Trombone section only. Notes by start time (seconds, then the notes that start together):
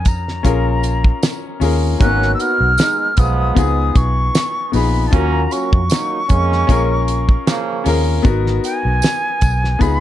2.01 F#3 A#3 C#4
2.40 B3 D#4 F#4
2.79 G#3 B3 D#4
3.18 F3 G#3 B3
5.13 F#3 A#3 C#4
5.52 F#3 A#3 C#4
5.91 F#3 A#3 D#4
6.30 G#3 A#3 C#4
7.47 C#3 F3 A#3